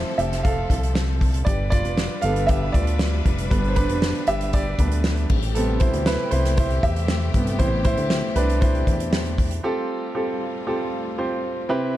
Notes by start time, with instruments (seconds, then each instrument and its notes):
Already playing: string section F3 C4 A4, grand piano F3 A3 C4 E4 F4 G4 C5 D5 E5
0.18 analog synth bass F1, grand piano G4 E5, closed hi-hat
0.32 snare, closed hi-hat
0.43 grand piano A4 F5, kick, closed hi-hat
0.70 analog synth bass C2, kick, closed hi-hat
0.83 closed hi-hat
0.95 snare
1.21 kick, open hi-hat
1.34 closed hi-hat
1.45 analog synth bass G1, string section G3 D4 B4, grand piano G4 D5, kick, closed hi-hat
1.70 grand piano F4 D5, kick, closed hi-hat
1.85 analog synth bass F1, closed hi-hat
1.98 snare
2.22 analog synth bass G1, grand piano D3 G3 B3 A4 F5, closed hi-hat
2.36 closed hi-hat
2.47 grand piano G4 E5, kick, closed hi-hat
2.72 analog synth bass D2, grand piano F4 D5, kick, closed hi-hat
2.87 closed hi-hat
2.99 snare
3.25 analog synth bass F1, kick, closed hi-hat
3.38 closed hi-hat
3.51 analog synth bass G1, grand piano D3 G3 B3 D4 B4, kick, closed hi-hat
3.64 closed hi-hat
3.68 grand piano C5
3.76 grand piano D4 B4, kick, closed hi-hat
3.89 analog synth bass F1, closed hi-hat
4.02 snare
4.15 closed hi-hat
4.27 analog synth bass G1, grand piano G4 E5, closed hi-hat
4.41 closed hi-hat
4.53 grand piano G4 D5, kick, closed hi-hat
4.79 analog synth bass D2, grand piano D3 G3 B3 D4 B4, kick, closed hi-hat
4.92 closed hi-hat
5.04 snare
5.17 closed hi-hat
5.30 analog synth bass A1, string section C3 A3 G4, kick, crash
5.42 closed hi-hat
5.55 grand piano C3 G3 B3 C4 A4, closed hi-hat
5.80 grand piano E4 C5, kick, closed hi-hat
5.93 analog synth bass D2, closed hi-hat
6.06 grand piano E4 B4, snare
6.31 analog synth bass C2, grand piano E4 C5, closed hi-hat
6.45 snare, closed hi-hat
6.57 grand piano E4 C5, kick, closed hi-hat
6.70 closed hi-hat
6.83 analog synth bass E2, grand piano G4 E5, kick, closed hi-hat
6.96 closed hi-hat
7.08 snare
7.34 analog synth bass G1, grand piano C3 G3 B3, kick, closed hi-hat
7.47 closed hi-hat
7.59 analog synth bass A1, grand piano E4 C5, kick, closed hi-hat
7.85 grand piano E4 C5, kick, closed hi-hat
7.97 analog synth bass D2, closed hi-hat
8.10 snare
8.36 analog synth bass C2, grand piano D4 B4, closed hi-hat
8.49 closed hi-hat
8.61 grand piano E4 C5, kick, closed hi-hat
8.75 closed hi-hat
8.87 analog synth bass E2, kick, closed hi-hat
9.00 closed hi-hat
9.13 snare
9.26 closed hi-hat
9.38 kick, open hi-hat
9.51 closed hi-hat
9.63 string section G3 A3 F4, grand piano C4 F4 G4 A4
10.15 grand piano C4 F4 G4 A4
10.67 grand piano C4 F4 G4 A4
11.18 grand piano C4 F4 G4 C5
11.69 grand piano C3 C4 E4 G4 B4, string section C3 C4 E4